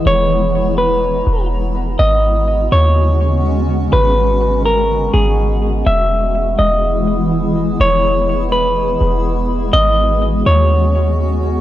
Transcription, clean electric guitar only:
X:1
M:4/4
L:1/8
Q:1/4=124
K:G#m
V:1 name="Clean electric guitar"
c3 B3 z2 | d3 c4- c | B3 A2 G3 | e3 d4- d |
c3 B3 z2 | d3 c4- c |]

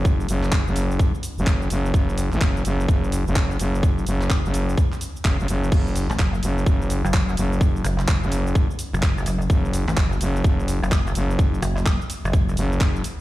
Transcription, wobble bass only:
X:1
M:4/4
L:1/16
Q:"Swing 16ths" 1/4=127
K:F#m
V:1 name="Wobble bass" clef=bass
z16 | z16 | z16 | z3 A,,, F,,,2 z4 z F,,,3 z2 |
z2 F,,,3 z6 F,,,3 F,,,2 | z3 A,,, F,,,2 z4 z F,,,3 z2 | z2 F,,,3 z2 F,,,3 z6 |]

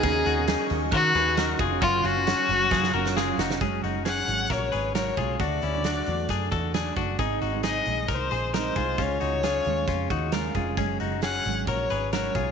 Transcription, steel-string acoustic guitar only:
X:1
M:4/4
L:1/16
Q:1/4=134
K:F#
V:1 name="Steel-string acoustic guitar"
[D,A,CF]3 [A,CF]3 [D,A,CF]4 [D,A,CF]2 [D,A,CF]3 [A,CF] | [F,A,CE]3 [A,C]3 [F,A,]4 [F,A,CE]2 [F,A,CE]3 [A,CE] | [F,G,CF]3 [G,CF]3 [F,G,CF]6 [F,G,CF]2 [F,G,CF]2 | [=D,=A,=DF]3 [A,DF]3 [D,A,DF]6 [D,A,DF]2 [D,A,DF]2 |
[G,,D,G,^B,D]3 [G,B,D]3 [D,G,B,D]6 [D,G,B,D]2 [D,G,B,D]2 | [C,G,CE]3 [G,CE]3 [C,G,CE]6 [C,G,CE]2 [C,G,CE]2 | [F,G,CF]3 [G,CF]3 [F,G,CF]6 [F,G,CF]2 [F,G,CF]2 |]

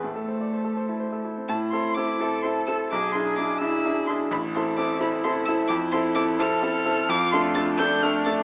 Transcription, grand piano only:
X:1
M:6/8
L:1/16
Q:3/8=86
K:Am
V:1 name="Grand piano"
A,, A c d c A c E c A E C | A,,2 [CEA]2 [CEA]2 [CEA]2 [CEA]2 [CEA]2 | B,,,2 [DE^G]2 [DEG]2 [DEG]2 [DEG]2 [DEG]2 | A,,,2 [CEA]2 [CEA]2 [CEA]2 [CEA]2 [CEA]2 |
F,,2 [CEA]2 [CEA]2 [CEA]2 [CEA]2 [CEA]2 | [K:Ddor] F,,2 [A,DA]2 [A,DA]2 [A,DA]2 [A,DA]2 [A,DA]2 |]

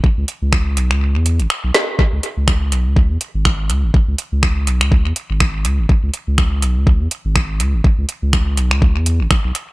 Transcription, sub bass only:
X:1
M:4/4
L:1/16
Q:"Swing 16ths" 1/4=123
K:C#m
V:1 name="Sub bass" clef=bass
z C,, z C,,3 B,,, C,,2 E,,2 G,,, z B,,, z2 | z C,, z C,,3 B,,, C,,2 E,, z G,,,3 C,, G,,, | z C,, z C,,3 B,,, C,,2 E,, z G,,,3 C,, G,,, | z C,, z C,,3 B,,, C,,2 E,, z G,,,3 C,, G,,, |
z C,, z C,,3 B,,, C,,2 E,,2 G,,, z B,,, z2 |]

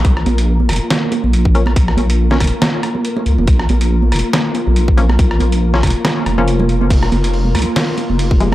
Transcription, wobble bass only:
X:1
M:4/4
L:1/16
Q:"Swing 16ths" 1/4=140
K:Bbm
V:1 name="Wobble bass" clef=bass
B,,,2 B,,,4 F,,, z4 B,,,4- B,,, | B,,,2 B,,,4 F,,, z6 z D,, F,,, | B,,,2 B,,,4 F,,, z4 B,,,4- B,,, | B,,,2 B,,,4 F,,, z3 F,,, F,,,4- F,,, |
F,,,2 F,,,4 C,, z4 F,,,4- F,,, |]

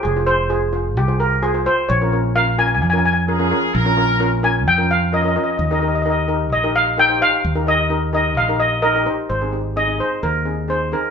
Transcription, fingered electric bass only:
X:1
M:4/4
L:1/8
Q:1/4=130
K:Ebmix
V:1 name="Fingered electric bass" clef=bass
F,,,4 C,,4 | B,,,4 F,,4 | B,,,4 F,,4 | E,,4 B,,,4 |
E,,4 B,,,4 | A,,,4 E,,4 |]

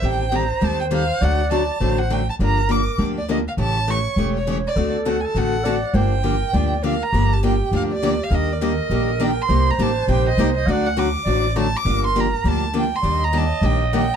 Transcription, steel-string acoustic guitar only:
X:1
M:4/4
L:1/8
Q:"Swing" 1/4=203
K:Gm
V:1 name="Steel-string acoustic guitar"
[E,G,CGA] z [E,G,CGA] z [E,G,CGA] z [E,G,CGA] z | [D,^F,A,D^F] z [D,F,A,DF] z [D,F,A,DF] z [D,F,A,DF] z | [D,F,B,DG] z [D,F,B,DG] z [D,F,B,DG] z [D,F,B,DG] z | [^C,=E,A,^CG] z [C,E,A,CG] z [C,E,A,CG] z [C,E,A,CG] z |
[D,A,C^FA] z [D,A,CFA] z [D,A,CFA] z [D,A,CFA] z | [D,F,B,DG] z [D,F,B,DG] z [D,F,B,DG] z [D,F,B,DG] z | [D,F,B,DG] z [D,F,B,DG] z [D,F,B,DG] z [D,F,B,DG] z | [E,G,B,DG] z [E,G,B,DG] z [E,G,B,DG] z [E,G,B,DG] z |
[C,G,B,EG] z [C,G,B,EG] z [C,G,B,EG] z [C,G,B,EG] z | [D,^F,A,D^F] z [D,F,A,DF] z [D,F,A,DF] z [D,F,A,DF] z | [D,F,B,DG] z [D,F,B,DG] z [D,F,B,DG] z [D,F,B,DG] z | [E,G,B,DG] z [E,G,B,DG] z [E,G,B,DG] z [E,G,B,DG] z |]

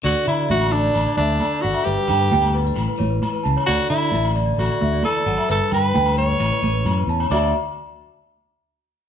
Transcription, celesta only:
X:1
M:4/4
L:1/16
Q:1/4=132
K:D
V:1 name="Celesta"
d d e d e z d d z d e d z d f e | B B g B g z B B z B c B z B a c | d z e d e z d d z d e d z d f e | B B g B g z B B z B c B z B a c |
[Fde]2 z12 z2 |]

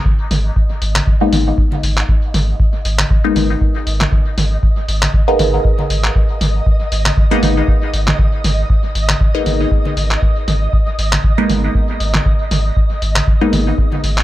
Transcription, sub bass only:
X:1
M:4/4
L:1/8
Q:"Swing 16ths" 1/4=118
K:G#m
V:1 name="Sub bass" clef=bass
z G,,, z G,,, z G,,, z G,,, | z G,,, z G,,, z G,,, z G,,, | z G,,, z G,,, z G,,, z G,,, | z G,,, z G,,, z G,,, z G,,, |
z G,,, z G,,, z G,,, z G,,, | z G,,, z G,,, z G,,, z G,,, | z G,,, z G,,, z G,,, z G,,, |]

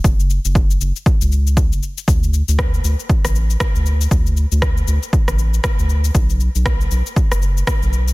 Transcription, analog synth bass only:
X:1
M:4/4
L:1/16
Q:"Swing 16ths" 1/4=118
K:Dlyd
V:1 name="Analog synth bass" clef=bass
F,,,3 F,,,3 F,,, z2 C,,4 F,,, z2 | D,,3 D,,3 D,, z2 A,,,3 z D,,3 | D,,3 D,,3 D,, z2 A,,,3 z D,,3 | B,,,3 B,,,3 B,,, z2 F,,,3 z B,,,3 |]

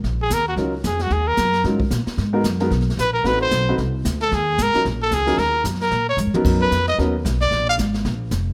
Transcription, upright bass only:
X:1
M:4/4
L:1/8
Q:"Swing" 1/4=225
K:Ebm
V:1 name="Upright bass" clef=bass
B,,,2 E,,2 D,,2 F,,2 | E,,2 G,,2 A,,2 B,, z | A,,2 G,,2 C,,2 B,,,2 | =A,,,2 C,,2 =C,,2 =D,,2 |
E,,2 A,,, z B,,,2 D,,2 | E,,2 G,,2 B,,2 (3A,, G,, E,, | ^F,,2 =F,,2 ^D,,2 =B,,,2 | B,,,2 A,,,2 B,,,2 F,,,2 |]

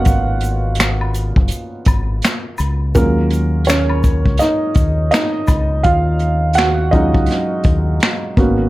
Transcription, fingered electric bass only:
X:1
M:4/4
L:1/16
Q:"Swing 16ths" 1/4=83
K:Ebm
V:1 name="Fingered electric bass" clef=bass
A,,,6- A,,, G,,, z2 A,,,2 z2 D,,2 | E,,6- E,, D,, z2 E,,2 z2 D,,2 | E,,6- E,, D,, z2 E,,2 z2 A,,,2 |]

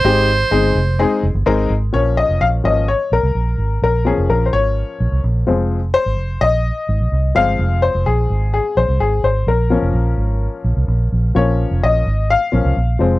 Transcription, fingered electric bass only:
X:1
M:4/4
L:1/16
Q:1/4=127
K:Bbdor
V:1 name="Fingered electric bass" clef=bass
A,,,4 G,,,2 F,,,3 z F,,, G,,, A,,,2 A,,,2 | B,,,3 F,,, B,,,2 A,,,3 z B,,, C,, B,,,2 A,,,2 | B,,,3 F,,, B,,,2 A,,,3 z B,,, C,, B,,,2 F,,,2- | F,,,3 A,,, F,,,2 B,,,3 z A,,, B,,, C,,2 G,,,2 |
F,,,3 F,,, B,,,2 A,,,3 z B,,, C,, A,,,2 A,,,2 | B,,,3 F,,, B,,,2 A,,,3 z B,,, C,, B,,,2 B,,,2 | B,,,3 F,,, B,,,2 A,,,3 z B,,, C,, B,,,2 F,,,2 |]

